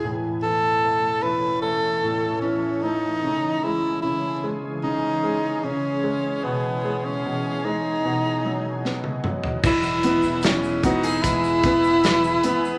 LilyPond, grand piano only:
\new Staff \with { instrumentName = "Grand piano" } { \clef bass \time 4/4 \key e \major \tempo 4 = 75 a,8 e8 a8 e8 a8 a,8 e8 a8 | cis8 gis8 cis8 gis8 cis8 gis8 cis8 gis8 | b,8 gis8 b,8 gis8 b,8 fis8 b8 fis8 | e8 b8 e8 b8 e8 b8 e8 b8 | }